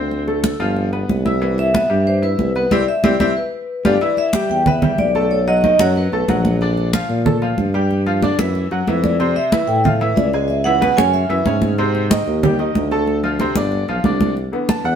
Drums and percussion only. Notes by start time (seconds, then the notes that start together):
0.11 high conga
0.28 high conga
0.44 high conga
0.60 high conga
0.77 high conga
0.93 high conga
1.09 high conga
1.26 high conga
1.42 high conga
1.58 high conga
1.75 high conga
2.07 high conga
2.23 high conga
2.39 high conga
2.56 high conga
2.71 high conga
3.04 high conga
3.20 high conga
3.85 high conga
4.01 high conga
4.17 high conga
4.33 high conga
4.50 high conga
4.66 high conga, low conga
4.82 high conga, low conga
4.98 high conga
5.15 high conga
5.31 high conga
5.47 high conga
5.64 high conga
5.79 high conga
5.96 high conga
6.12 high conga
6.28 high conga
6.45 high conga
6.61 high conga
6.77 high conga
6.93 high conga
7.10 high conga
7.26 high conga, low conga
7.42 high conga
7.58 high conga
7.74 high conga
7.91 high conga
8.06 high conga
8.22 high conga
8.39 high conga
8.55 high conga
8.71 high conga
8.87 high conga
9.04 high conga
9.20 high conga
9.36 high conga
9.52 high conga
9.69 high conga
9.85 high conga, low conga
10.01 high conga
10.17 high conga
10.33 high conga
10.50 high conga
10.66 high conga
10.82 high conga
10.98 high conga
11.14 high conga
11.30 high conga
11.46 high conga
11.62 high conga
11.78 high conga
11.95 high conga
12.11 high conga
12.27 high conga
12.43 high conga, low conga
12.59 high conga
12.75 high conga
12.91 high conga
13.07 high conga
13.24 high conga
13.39 high conga
13.56 high conga
13.72 high conga
13.88 high conga
14.04 high conga
14.21 high conga
14.37 high conga
14.53 high conga
14.69 high conga
14.85 high conga